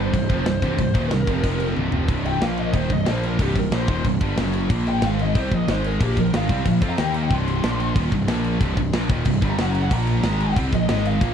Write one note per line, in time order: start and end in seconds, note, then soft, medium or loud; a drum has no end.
0.00 0.11 G1 loud
0.00 0.12 G2 loud
0.00 0.13 D3 medium
0.00 0.13 G3 medium
0.00 1.10 C5 loud
0.13 0.29 C1 medium
0.13 0.26 C2 medium
0.13 0.27 G2 medium
0.13 kick medium
0.13 crash medium
0.29 0.45 F1 loud
0.29 0.45 F2 medium
0.29 0.45 C3 loud
0.29 0.46 F3 medium
0.29 kick loud
0.29 crash medium
0.45 0.61 C1 medium
0.45 0.59 C2 medium
0.45 0.59 G2 medium
0.45 snare loud
0.45 crash medium
0.62 0.78 C1 loud
0.62 0.77 C2 medium
0.62 0.77 G2 medium
0.62 0.78 C3 loud
0.62 kick loud
0.62 crash medium
0.78 0.94 C1 medium
0.78 0.91 C2 medium
0.78 0.92 G2 medium
0.78 kick medium
0.78 crash medium
0.94 1.10 D#1 medium
0.94 1.10 D#2 medium
0.94 1.11 A#2 loud
0.94 1.11 D#3 loud
0.94 kick loud
0.94 crash medium
1.10 1.27 C1 medium
1.10 1.24 C2 medium
1.10 1.24 G2 medium
1.10 1.71 A#4 loud
1.10 snare loud
1.10 crash medium
1.27 1.43 F1 loud
1.27 1.43 F2 loud
1.27 1.43 C3 loud
1.27 1.43 F3 loud
1.27 kick loud
1.27 crash medium
1.43 1.74 F1 loud
1.43 1.75 F2 medium
1.43 1.75 C3 loud
1.43 1.76 F3 loud
1.43 kick loud
1.43 crash medium
1.60 crash medium
1.76 1.92 C1 loud
1.76 1.91 C2 medium
1.76 1.92 G2 medium
1.76 1.91 C3 loud
1.76 high tom medium
1.92 2.08 F1 medium
1.92 2.07 F2 medium
1.92 2.08 C3 medium
1.92 2.08 F3 loud
1.92 floor tom medium
2.08 2.39 C1 medium
2.08 2.41 C2 medium
2.08 2.41 G2 loud
2.08 2.41 C3 medium
2.08 kick loud
2.08 crash medium
2.26 2.42 G5 loud
2.26 crash medium
2.41 2.72 A#1 medium
2.41 2.72 A#2 medium
2.41 2.73 F3 medium
2.41 2.74 A#3 medium
2.41 2.58 F5 medium
2.41 snare loud
2.41 crash medium
2.57 2.75 D#5 medium
2.57 crash medium
2.73 2.89 D#1 loud
2.73 2.89 D#2 loud
2.73 2.89 A#2 loud
2.73 2.90 D#3 loud
2.73 2.93 C5 medium
2.73 kick loud
2.73 crash medium
2.89 3.06 C1 medium
2.89 3.05 C2 medium
2.89 3.06 G2 medium
2.89 3.08 D#5 medium
2.89 kick medium
2.89 crash medium
3.05 3.37 A#1 medium
3.05 3.38 A#2 medium
3.05 3.38 F3 loud
3.05 3.39 A#3 loud
3.05 3.24 C5 medium
3.05 snare loud
3.05 crash medium
3.23 3.42 A#4 medium
3.23 crash medium
3.39 3.55 C1 loud
3.39 3.54 C2 medium
3.39 3.54 G2 medium
3.39 3.56 C3 loud
3.39 3.57 G4 medium
3.39 kick loud
3.39 crash medium
3.55 3.71 C1 medium
3.55 3.69 C2 medium
3.55 3.69 G2 medium
3.55 3.74 A#4 medium
3.55 kick medium
3.55 crash medium
3.71 3.87 A#1 medium
3.71 3.88 A#2 medium
3.71 3.88 F3 medium
3.71 3.89 A#3 loud
3.71 4.05 C5 loud
3.71 snare loud
3.71 crash medium
3.88 4.04 D#1 loud
3.88 4.04 D#2 medium
3.88 4.05 A#2 medium
3.88 4.05 D#3 loud
3.88 kick loud
3.88 crash medium
4.04 4.20 C1 medium
4.04 4.18 C2 medium
4.04 4.18 G2 medium
4.04 kick loud
4.04 crash medium
4.21 4.36 G1 loud
4.21 4.37 G2 medium
4.21 4.37 D3 medium
4.21 4.37 G3 loud
4.21 kick loud
4.21 crash medium
4.37 4.68 F#1 medium
4.37 4.70 F#2 medium
4.37 4.70 C#3 medium
4.37 4.70 F#3 loud
4.37 snare loud
4.37 crash medium
4.46 snare soft
4.53 crash medium
4.70 5.00 A#1 loud
4.70 5.03 A#2 loud
4.70 5.04 F3 loud
4.70 5.04 A#3 loud
4.70 kick loud
4.70 crash medium
4.87 5.03 G5 loud
4.87 crash medium
5.02 5.33 G#1 loud
5.02 5.35 G#2 medium
5.02 5.36 D#3 medium
5.02 5.36 G#3 loud
5.02 5.20 F5 medium
5.02 snare loud
5.02 crash medium
5.19 5.36 D#5 loud
5.19 crash medium
5.35 5.50 C2 loud
5.35 5.52 C3 medium
5.35 5.52 G3 loud
5.35 5.52 C4 loud
5.35 kick loud
5.35 crash medium
5.39 5.55 C5 medium
5.51 5.67 A#1 medium
5.51 5.68 A#2 medium
5.51 5.68 F3 medium
5.51 5.71 D#5 medium
5.51 kick medium
5.51 crash medium
5.68 5.98 G#1 loud
5.68 6.00 G#2 medium
5.68 6.00 D#3 loud
5.68 6.01 G#3 loud
5.68 5.85 C5 medium
5.68 snare loud
5.68 crash medium
5.84 6.03 A#4 medium
5.84 crash medium
6.00 6.16 A#1 medium
6.00 6.16 A#2 loud
6.00 6.17 F3 medium
6.00 6.17 A#3 loud
6.00 6.18 G4 loud
6.00 kick loud
6.00 crash medium
6.17 6.32 A#1 medium
6.17 6.30 A#2 medium
6.17 6.30 F3 medium
6.17 6.34 A#4 loud
6.17 kick medium
6.17 crash medium
6.33 6.49 G#1 loud
6.33 6.49 G#2 loud
6.33 6.49 D#3 medium
6.33 6.49 G#3 loud
6.33 6.66 F5 medium
6.33 snare loud
6.33 crash medium
6.49 6.65 C2 loud
6.49 6.65 C3 medium
6.49 6.66 G3 medium
6.49 6.66 C4 medium
6.49 kick loud
6.49 crash medium
6.66 6.81 A#1 medium
6.66 6.79 A#2 medium
6.66 6.79 F3 medium
6.66 kick loud
6.66 crash medium
6.82 6.97 F2 medium
6.82 6.98 F3 medium
6.82 6.98 C4 medium
6.82 6.98 F4 loud
6.82 kick loud
6.82 crash medium
6.90 6.99 A#5 medium
6.98 7.29 D#2 medium
6.98 7.30 D#3 loud
6.98 7.30 A#3 loud
6.98 7.31 D#4 loud
6.98 7.12 G5 loud
6.98 snare loud
6.98 crash medium
7.12 7.21 A#5 medium
7.12 crash medium
7.23 7.32 G5 medium
7.29 7.61 C1 loud
7.29 7.62 C2 medium
7.29 7.63 G2 loud
7.29 7.63 C3 loud
7.29 kick loud
7.29 crash medium
7.33 7.95 C6 loud
7.48 crash medium
7.63 7.94 A#1 medium
7.63 7.94 A#2 medium
7.63 7.95 F3 loud
7.63 7.96 A#3 medium
7.63 snare loud
7.63 crash medium
7.80 crash medium
7.95 8.11 D#1 loud
7.95 8.11 D#2 loud
7.95 8.11 A#2 loud
7.95 8.12 D#3 loud
7.95 kick loud
7.95 crash medium
8.12 8.27 C1 medium
8.12 8.25 C2 medium
8.12 8.25 G2 medium
8.12 kick medium
8.12 crash medium
8.28 8.59 A#1 loud
8.28 8.60 A#2 medium
8.28 8.61 F3 loud
8.28 8.61 A#3 loud
8.28 snare loud
8.28 crash medium
8.36 snare soft
8.44 crash medium
8.60 8.76 C1 loud
8.60 8.76 C2 loud
8.60 8.76 G2 loud
8.60 8.77 C3 loud
8.60 kick loud
8.60 crash medium
8.77 8.92 C1 medium
8.77 8.90 C2 medium
8.77 8.90 G2 medium
8.77 kick loud
8.77 crash medium
8.93 9.09 A#1 medium
8.93 9.09 A#2 loud
8.93 9.09 F3 loud
8.93 9.10 A#3 loud
8.93 snare loud
8.93 crash medium
9.09 9.25 D#1 loud
9.09 9.25 D#2 medium
9.09 9.26 A#2 medium
9.09 9.26 D#3 medium
9.09 kick loud
9.09 crash medium
9.25 9.41 C1 medium
9.25 9.39 C2 medium
9.25 9.39 G2 medium
9.25 kick loud
9.25 crash medium
9.41 9.57 G1 loud
9.41 9.57 G2 loud
9.41 9.58 D3 loud
9.41 9.58 G3 loud
9.41 kick loud
9.41 crash medium
9.50 9.60 A#5 loud
9.58 9.89 F#1 medium
9.58 9.90 F#2 medium
9.58 9.90 C#3 loud
9.58 9.90 F#3 loud
9.58 9.71 F#5 loud
9.58 snare loud
9.58 crash medium
9.72 9.81 A#5 loud
9.72 crash medium
9.82 9.92 F#5 loud
9.90 10.22 A#1 loud
9.90 10.23 A#2 loud
9.90 10.23 F3 loud
9.90 10.23 A#3 loud
9.90 10.55 A#5 loud
9.90 kick loud
9.90 crash loud
10.07 crash medium
10.23 10.54 G#1 loud
10.23 10.56 G#2 medium
10.23 10.55 D#3 loud
10.23 10.56 G#3 loud
10.23 snare loud
10.23 crash medium
10.40 crash medium
10.56 10.72 C2 loud
10.56 10.72 C3 loud
10.56 10.72 G3 loud
10.56 10.72 C4 loud
10.56 kick loud
10.56 crash medium
10.73 10.88 A#1 medium
10.73 10.86 A#2 medium
10.73 10.86 F3 medium
10.73 11.05 D#5 loud
10.73 kick medium
10.73 crash medium
10.89 11.19 G#1 loud
10.89 11.20 G#2 loud
10.89 11.21 D#3 loud
10.89 11.21 G#3 loud
10.89 snare loud
10.89 crash medium
10.97 snare soft
11.05 11.34 F5 loud
11.05 crash medium
11.21 11.34 A#1 loud
11.21 11.34 A#2 loud
11.21 11.34 F3 loud
11.21 11.34 A#3 loud
11.21 kick loud
11.21 crash medium